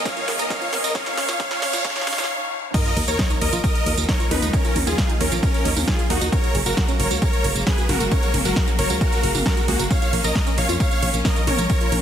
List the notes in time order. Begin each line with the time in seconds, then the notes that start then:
Already playing: G#2 D#3 B3 G#4 D#5, riser
0.05 C#4 C#5 F5, kick, snare, closed hi-hat, tambourine
0.17 F4, closed hi-hat, tambourine
0.28 A#4, snare, open hi-hat
0.39 A#4 D#5, closed hi-hat, tambourine
0.50 C#4 C#5 F5, kick, snare, closed hi-hat, mid tom, tambourine
0.61 F4, closed hi-hat, tambourine
0.73 A#4, snare, open hi-hat
0.84 A#4 D#5, closed hi-hat, tambourine
0.95 C#4 C#5 F5, kick, snare, closed hi-hat, tambourine, noise sweep
1.06 F4, snare, closed hi-hat, tambourine
1.17 C#4 C#5 F5, snare, open hi-hat
1.29 F4, snare, closed hi-hat, tambourine
1.40 C#4 C#5 F5, kick, snare, closed hi-hat, tambourine
1.51 F4, snare, closed hi-hat, tambourine
1.62 C#4 C#5 F5, snare, open hi-hat
1.73 F4, snare, tambourine
1.85 C#4 C#5 F5, kick, snare, closed hi-hat, tambourine
1.90 snare
1.96 F4, snare, closed hi-hat, tambourine
2.01 snare
2.07 C#4 C#5 F5, snare, open hi-hat
2.13 snare
2.18 F4, snare, closed hi-hat, mid tom, tambourine
2.24 snare
2.74 D#3 F3 A#3 D#4 A#4 D#5, kick, closed hi-hat, crash, ride, tambourine, sub drop
2.85 F4, closed hi-hat, tambourine
2.97 D#2 A#4, open hi-hat, ride
3.08 D#2 A#4 C#5, closed hi-hat, tambourine
3.19 D#5, kick, snare, closed hi-hat, ride, tambourine
3.30 D#4, closed hi-hat, tambourine
3.41 D#2 A#4 D#5, open hi-hat, ride
3.53 A#1 F4, closed hi-hat, tambourine
3.64 A#4 D#5, kick, closed hi-hat, ride, tambourine
3.75 closed hi-hat, tambourine
3.86 D#2 D#5, open hi-hat, ride
3.97 D#2, closed hi-hat, tambourine
4.09 D#4 A#4 C#5, kick, snare, closed hi-hat, ride, tambourine
4.20 F4, closed hi-hat, tambourine
4.31 D#2 D#4 A#4 B4, open hi-hat, mid tom, ride
4.42 D#2 D#5, closed hi-hat, tambourine
4.53 C#4 D#4 A#4, kick, closed hi-hat, ride, tambourine
4.65 F4, closed hi-hat, tambourine
4.76 D#2 A#4, open hi-hat, mid tom, ride
4.87 D#2 F4 G#4, closed hi-hat, tambourine
4.98 D#5, kick, snare, closed hi-hat, ride, tambourine
5.09 D#4, closed hi-hat, tambourine
5.21 D#2 C#4 A#4, open hi-hat, ride
5.32 A#1 F4, closed hi-hat, tambourine
5.43 C#4 A#4, kick, closed hi-hat, ride, tambourine
5.54 closed hi-hat, tambourine
5.65 D#2 D#5, open hi-hat, ride
5.76 D#2, open hi-hat, mid tom, tambourine
5.88 D#4 F4 G#4, kick, snare, ride, tambourine
5.99 F4, closed hi-hat, tambourine
6.10 D#2 D#4 F#4 A#4, open hi-hat, ride
6.21 D#2 D#5, closed hi-hat, tambourine
6.32 F#3 G#3 C#4 A#4 C#5, kick, closed hi-hat, ride, tambourine
6.44 F#4, closed hi-hat, tambourine
6.55 F#1 G#4, open hi-hat, ride
6.66 F#1 F#4 A#4, closed hi-hat, tambourine
6.77 A#4, kick, snare, closed hi-hat, ride
6.88 C#4, closed hi-hat, tambourine
7.00 F#1 A#4 C#5, open hi-hat, ride
7.11 C#2 F#4, closed hi-hat, tambourine
7.22 G#4 A#4 C#5, kick, closed hi-hat, ride, tambourine
7.33 closed hi-hat, tambourine
7.44 F#1 A#4, open hi-hat, ride
7.56 F#1, closed hi-hat, tambourine
7.67 C#4 G#4 B4, kick, snare, closed hi-hat, ride, tambourine
7.78 F#4, closed hi-hat, tambourine
7.89 F#1 F#4 G#4 A#4, open hi-hat, mid tom, ride
8.00 F#1 A#4, closed hi-hat, tambourine
8.11 C#4 A#4 C#5, kick, closed hi-hat, ride, tambourine
8.23 F#4, closed hi-hat, tambourine
8.34 F#1 G#4, open hi-hat, mid tom, ride
8.45 F#1 F#4 A#4, closed hi-hat, tambourine
8.56 A#4, kick, snare, closed hi-hat, ride, tambourine
8.68 C#4, closed hi-hat, tambourine
8.79 F#1 A#4 C#5, open hi-hat, ride
8.90 C#2 F#4, closed hi-hat, tambourine
9.01 F#4 G#4 A#4, kick, closed hi-hat, ride, tambourine
9.12 closed hi-hat, tambourine
9.23 F#1 A#4, open hi-hat, ride
9.34 F#1, open hi-hat, mid tom, tambourine
9.46 C#4 F#4 A#4, kick, snare, ride
9.57 F#4, closed hi-hat, tambourine
9.68 C#2 A#3 F#4 G#4, open hi-hat, ride
9.79 F#1 A#4, closed hi-hat, tambourine
9.91 F3 C#4 C#5 F5, kick, closed hi-hat, ride, tambourine
10.02 F4, closed hi-hat, tambourine
10.13 A#1 A#4, open hi-hat, ride
10.24 A#1 A#4 D#5, closed hi-hat, tambourine
10.35 C#5, kick, snare, closed hi-hat, ride, tambourine
10.47 C#4, closed hi-hat, tambourine
10.58 A#1 C#5 F5, open hi-hat, ride
10.69 F2 F4, closed hi-hat, tambourine
10.80 A#4 C#5 F5, kick, closed hi-hat, ride, tambourine
10.91 closed hi-hat, tambourine
11.03 A#1 C#5, open hi-hat, ride
11.14 A#1, closed hi-hat, tambourine
11.25 C#4 A#4 D#5, kick, snare, closed hi-hat, ride, tambourine
11.36 F4, closed hi-hat, tambourine
11.47 A#1 A#4 C#5, open hi-hat, mid tom, ride
11.58 A#1 C#5, closed hi-hat, tambourine
11.70 C#4 A#4 C#5, kick, closed hi-hat, ride, tambourine
11.81 F4, closed hi-hat, tambourine
11.92 A#1 A#4, open hi-hat, mid tom, ride